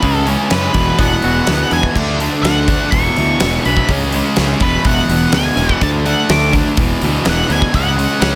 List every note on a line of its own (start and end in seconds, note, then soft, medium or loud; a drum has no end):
0.00 0.34 C#2 loud
0.00 0.25 C#3 loud
0.00 0.75 C#3 medium
0.00 0.26 G#3 loud
0.00 0.26 C#4 loud
0.00 0.25 B4 medium
0.00 kick medium
0.00 open hi-hat medium
0.27 0.49 C#3 medium
0.27 0.51 E3 medium
0.27 0.50 G#3 medium
0.27 0.50 C#4 loud
0.27 open hi-hat medium
0.50 0.67 F#2 medium
0.50 0.73 C#3 medium
0.50 0.76 E3 medium
0.50 0.74 G#3 medium
0.50 0.74 C#4 medium
0.50 1.02 B4 medium
0.50 snare loud
0.50 open hi-hat medium
0.74 0.90 E1 medium
0.74 0.98 E2 loud
0.74 1.96 E2 medium
0.74 0.99 B2 medium
0.74 0.99 E3 loud
0.74 kick medium
0.74 open hi-hat medium
0.99 1.15 E1 medium
0.99 1.23 E2 medium
0.99 1.23 B2 medium
0.99 1.24 E3 medium
0.99 1.47 B3 medium
0.99 1.73 F#5 loud
0.99 kick loud
0.99 open hi-hat medium
1.22 1.39 E1 medium
1.22 1.48 E2 medium
1.22 1.48 B2 medium
1.22 1.49 E3 medium
1.22 1.96 F#4 medium
1.22 open hi-hat medium
1.47 1.63 D2 medium
1.47 1.71 E2 medium
1.47 1.72 B2 medium
1.47 1.73 E3 loud
1.47 1.96 B3 medium
1.47 snare loud
1.47 open hi-hat medium
1.71 1.87 E2 medium
1.71 1.95 E2 medium
1.71 1.95 B2 medium
1.71 1.96 E3 medium
1.71 1.95 G#5 medium
1.71 open hi-hat medium
1.83 kick medium
1.95 2.27 D2 medium
1.95 2.19 D3 loud
1.95 2.19 A3 loud
1.95 2.20 D4 loud
1.95 kick medium
1.95 crash medium
2.20 2.42 D3 medium
2.20 2.44 A3 medium
2.20 2.44 D4 loud
2.20 open hi-hat medium
2.43 2.75 D2 medium
2.43 2.67 D3 medium
2.43 2.67 A3 medium
2.43 2.68 D4 medium
2.43 2.88 F#5 medium
2.43 snare loud
2.43 open hi-hat medium
2.68 2.91 D3 loud
2.68 2.91 A3 medium
2.68 2.92 D4 loud
2.68 kick medium
2.68 open hi-hat medium
2.91 3.08 E1 medium
2.91 3.17 E2 medium
2.91 3.18 B2 medium
2.91 3.18 E3 loud
2.91 3.65 C#6 loud
2.91 kick loud
2.91 open hi-hat medium
3.17 3.33 D2 medium
3.17 3.41 E2 medium
3.17 3.41 B2 medium
3.17 3.42 E3 medium
3.17 open hi-hat medium
3.40 3.57 E1 medium
3.40 3.65 E2 medium
3.40 3.65 B2 loud
3.40 3.66 E3 loud
3.40 snare loud
3.40 open hi-hat medium
3.65 3.81 B1 medium
3.65 3.88 E2 medium
3.65 3.88 B2 medium
3.65 3.89 E3 medium
3.65 3.88 B5 medium
3.65 open hi-hat medium
3.77 kick medium
3.89 4.20 C#2 medium
3.89 4.13 C#3 loud
3.89 4.14 G#3 loud
3.89 4.15 C#4 loud
3.89 kick loud
3.89 open hi-hat medium
4.12 4.37 C#3 medium
4.12 4.38 G#3 medium
4.12 4.39 C#4 loud
4.12 open hi-hat medium
4.36 4.53 C#2 medium
4.36 4.60 C#3 medium
4.36 4.61 G#3 medium
4.36 4.61 C#4 medium
4.36 snare loud
4.36 open hi-hat medium
4.60 4.76 E1 loud
4.60 4.85 E2 loud
4.60 4.86 B2 loud
4.60 4.86 E3 loud
4.60 4.87 B4 medium
4.60 kick medium
4.60 open hi-hat medium
4.85 5.01 E1 medium
4.85 5.09 E2 medium
4.85 5.10 B2 medium
4.85 5.10 E3 loud
4.85 5.31 F#5 loud
4.85 kick loud
4.85 open hi-hat medium
5.09 5.25 E1 medium
5.09 5.33 E2 medium
5.09 5.34 B2 medium
5.09 5.34 E3 loud
5.09 open hi-hat medium
5.32 5.48 D2 medium
5.32 5.56 E2 loud
5.32 5.58 B2 medium
5.32 5.58 E3 loud
5.32 5.83 G#5 medium
5.32 snare loud
5.32 open hi-hat medium
5.57 5.73 E1 medium
5.57 5.80 E2 medium
5.57 5.81 B2 medium
5.57 5.81 E3 medium
5.57 open hi-hat medium
5.69 kick medium
5.81 6.13 D2 medium
5.81 6.05 D3 loud
5.81 6.05 A3 loud
5.81 6.05 D4 loud
5.81 5.89 A5 loud
5.81 kick loud
5.81 open hi-hat medium
6.06 6.28 D3 medium
6.06 6.29 A3 loud
6.06 6.29 D4 loud
6.06 6.31 F#5 loud
6.06 open hi-hat medium
6.29 6.61 D2 medium
6.29 6.52 D3 medium
6.29 6.53 A3 medium
6.29 6.54 D4 medium
6.29 6.53 D6 medium
6.29 snare loud
6.29 open hi-hat medium
6.53 6.76 D3 loud
6.53 6.77 A3 loud
6.53 6.77 D4 loud
6.53 kick medium
6.53 open hi-hat medium
6.77 6.93 E1 medium
6.77 7.01 E2 medium
6.77 7.02 B2 loud
6.77 7.03 E3 loud
6.77 kick loud
6.77 open hi-hat medium
7.01 7.18 D2 loud
7.01 7.24 E2 medium
7.01 7.24 B2 loud
7.01 7.25 E3 medium
7.01 open hi-hat medium
7.25 7.42 E1 medium
7.25 7.48 E2 loud
7.25 7.49 B2 medium
7.25 7.49 E3 loud
7.25 snare loud
7.25 open hi-hat medium
7.29 7.52 F#5 loud
7.49 7.65 D2 loud
7.49 7.72 E2 medium
7.49 7.72 B2 loud
7.49 7.73 E3 medium
7.49 7.75 G#5 loud
7.49 open hi-hat medium
7.62 kick medium
7.72 8.05 C#2 medium
7.72 7.95 C#3 loud
7.72 7.97 G#3 loud
7.72 7.97 C#4 loud
7.72 8.35 F#5 loud
7.72 kick loud
7.72 open hi-hat medium
7.97 8.19 C#3 medium
7.97 8.20 G#3 medium
7.97 8.20 C#4 loud
7.97 open hi-hat medium
8.20 8.35 C#2 loud
8.20 8.35 C#3 medium
8.20 8.35 G#3 medium
8.20 8.35 C#4 medium
8.20 snare loud
8.20 open hi-hat medium